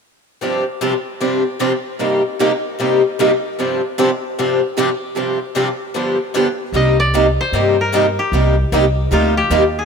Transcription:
0.41 G2 C3 F3 C4 D4 G4
0.81 G2 C3 F3 C4 D4 G4
1.21 G2 C3 F3 C4 D4 G4
1.60 G2 C3 F3 C4 D4 G4
1.99 G2 C3 G3 A#3 D#4 G4
2.40 G2 C3 G3 A#3 D#4 G4
2.79 G2 C3 G3 A#3 D#4 G4
3.19 G2 C3 G3 A#3 D#4 G4
3.59 G2 C3 F3 C4 D4 G4
3.98 G2 C3 F3 C4 D4 G4
4.39 G2 C3 F3 C4 D4 G4
4.77 G2 C3 F3 C4 D4 G4
5.16 G2 C3 F3 C4 D4 G4
5.55 G2 C3 F3 C4 D4 G4
5.94 G2 D3 F3 B3 D4 G4
6.34 G2 D3 F3 B3 D4 G4
6.72 C2 C3 G3 A#3 D#4 G4 D#5
7.00 D5
7.14 C3 G3 A#3 D#4 G4
7.41 C5
7.52 G2 C3 G3 A#3 D#4 G4
7.81 A#4
7.92 C3 G3 A#3 D#4 G4
8.19 G4
8.32 C2 C3 G3 A#3 D#4 G4
8.72 C2 C3 G3 A#3 D#4 G4
9.11 D2 C3 G3 A#3 D#4 F4 G4
9.37 G4
9.50 D#2 C3 G3 A#3 D#4 G4
9.79 G#4

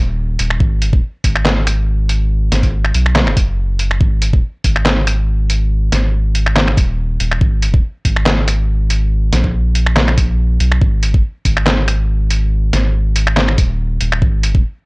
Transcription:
Already playing: D#1
0.39 D#1, closed hi-hat
0.50 finger snap
0.60 G#1, kick
0.82 closed hi-hat
0.93 kick
1.24 G#1, kick, closed hi-hat
1.36 finger snap
1.45 snare, clap
1.67 finger snap, closed hi-hat
2.09 closed hi-hat
2.52 G#1, snare, closed hi-hat
2.63 kick, closed hi-hat
2.85 finger snap
2.94 B1, closed hi-hat
3.06 finger snap
3.16 snare, clap
3.27 finger snap
3.37 F#1, kick, closed hi-hat
3.79 closed hi-hat
3.91 finger snap
4.01 G#1, kick
4.22 closed hi-hat
4.33 kick
4.64 G#1, kick, closed hi-hat
4.76 finger snap
4.86 snare, clap
5.07 finger snap, closed hi-hat
5.50 closed hi-hat
5.92 G#1, snare, closed hi-hat
6.35 closed hi-hat
6.46 finger snap
6.56 snare, clap
6.68 finger snap
6.77 D#1, kick, closed hi-hat
7.20 D#1, closed hi-hat
7.31 finger snap
7.41 G#1, kick
7.62 closed hi-hat
7.74 kick
8.05 G#1, kick, closed hi-hat
8.16 finger snap
8.26 snare, clap
8.48 finger snap, closed hi-hat
8.90 closed hi-hat
9.33 A#1, snare, closed hi-hat
9.44 kick
9.75 closed hi-hat
9.86 finger snap
9.96 snare, clap
10.08 finger snap
10.18 kick, closed hi-hat
10.60 B1, closed hi-hat
10.72 finger snap
10.82 G#1, kick
11.03 closed hi-hat
11.14 kick
11.45 G#1, kick, closed hi-hat
11.57 finger snap
11.67 snare, clap
11.88 finger snap, closed hi-hat
12.30 closed hi-hat
12.73 G#1, snare, closed hi-hat
13.16 closed hi-hat
13.27 finger snap
13.37 snare, clap
13.48 finger snap
13.58 D#1, kick, closed hi-hat
14.01 D#1, closed hi-hat
14.12 finger snap
14.22 G#1, kick
14.43 closed hi-hat
14.55 kick

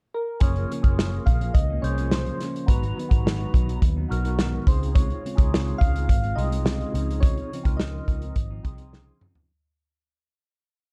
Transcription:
0.14 A#4
0.40 F#1 F#2 C#3 F3 A#3 C#4 F4 G#4 A#4 C#5, kick, closed hi-hat
0.56 F3 A#3 C#4, closed hi-hat
0.69 C#3 F3 A#3 C#4, closed hi-hat
0.81 F#1 C#4 F4 G#4 A#4, kick, closed hi-hat
0.87 F3 A#3
0.98 F#2 C#3 F3 A#3 C#4, snare
1.12 F3 A#3 C#4, closed hi-hat
1.26 A#1 C#3 F3 A#3 C#4 F5, kick, closed hi-hat
1.41 F3 A#3 C#4, closed hi-hat
1.54 C#2 D#5, kick, closed hi-hat
1.70 F3 A#3 C#4
1.82 C2 C#4 F4 G#4 C5 C#5, closed hi-hat
1.98 F3 A#3 C#4, closed hi-hat
2.11 F#2 C#3 F3 A#3 C#4 C5, snare
2.26 closed hi-hat
2.40 C#3 F3 A#3 C#4, snare, closed hi-hat
2.56 closed hi-hat
2.66 G#1 G#2 D#3 B3 D#4 F#4 B4 A#5, kick, closed hi-hat
2.70 F#3 B3 D#4
2.82 F#3 B3 D#4, closed hi-hat
2.96 D#3 F#3 B3 D#4, closed hi-hat
3.09 G#1 B3 D#4 F#4 A#5, kick, closed hi-hat
3.13 F#3
3.25 G#2 D#3 F#3 B3 D#4, snare
3.40 closed hi-hat
3.52 B1 D#3 F#3 B3 D#4, kick, closed hi-hat
3.67 F#3 B3 D#4, closed hi-hat
3.82 D#2, kick, closed hi-hat
3.96 F#3 B3 D#4
4.08 B1 B3 D#4 F#4 A#4, closed hi-hat
4.25 F#3 B3 D#4, closed hi-hat
4.39 G#2 D#3 F#3 B3 D#4, snare
4.65 C#2 C#3 C4 D#4 F4 G#4 C5, kick, closed hi-hat
4.70 G#3 C4 F4
4.83 closed hi-hat
4.95 C#3 G#3 C4 F4 C#5, kick, closed hi-hat
5.10 G#3 C4 F4, closed hi-hat
5.24 C#3 G#3 C4 F4, closed hi-hat
5.35 C#2 C#4 D#4 F4 G#4, kick, closed hi-hat
5.41 C4
5.53 C#3 G#3 C4 F4, snare
5.68 closed hi-hat
5.78 C#2 C#3 F5, kick, closed hi-hat
5.83 G#3 C4 F4
5.95 G#3 C4 F4, closed hi-hat
6.09 G#1, kick, closed hi-hat
6.22 G#3 C4 F4, closed hi-hat
6.36 C2 C4 D#4 F4 G#4 D#5, closed hi-hat
6.50 G#3 C4 F4, closed hi-hat
6.64 C#3 G#3 C4 F4, snare
6.81 closed hi-hat
6.92 C#2 C#3 F3 C4 D#4 F4 G#4, closed hi-hat
6.97 C4 D#4
7.11 closed hi-hat
7.20 C#3 F3 C4 D#4 C#5, kick, closed hi-hat
7.37 F3 C4 D#4, closed hi-hat
7.51 C#3 F3 C4 D#4, closed hi-hat
7.64 C#2 C4 D#4 F4 A#4, kick, closed hi-hat
7.69 F3
7.77 D#5, snare
7.82 C#3 F3 C4 D#4
8.08 C#2 C#3 F3 C4 D#4, kick, closed hi-hat
8.22 F3 C4 D#4, closed hi-hat
8.36 G#1, kick, closed hi-hat
8.51 F3 C4 D#4
8.63 C2 C4 D#4 F4 G#4, kick, closed hi-hat
8.78 F3 C4 D#4, closed hi-hat
8.93 C#3 F3 C4 D#4, snare
9.20 C#3 F3 C4 D#4, mid tom
9.35 floor tom

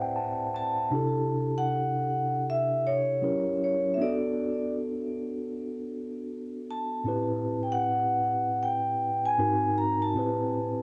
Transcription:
Already playing: A2 C4 E4 G4 B4 C5 D5 E5 F#5 A5
0.01 G5
0.16 A5
0.54 A5
0.90 C3 D4 E4 G4
0.95 A4
1.58 F#5
2.50 E5
2.87 C#5
3.22 F#3 C#4 E4 G4 A#4
3.64 C#5
3.94 B3 E5
3.98 D4 F#4 A4 D5
6.71 A5
7.04 A2 C4 E4 G4
7.08 B4
7.63 G5
7.72 F#5
8.63 G5
9.26 G#5
9.38 G#2 C4 D#4 F#4 A#4
9.78 A#5
10.02 A5
10.14 A2 C4 E4 G4
10.19 B4

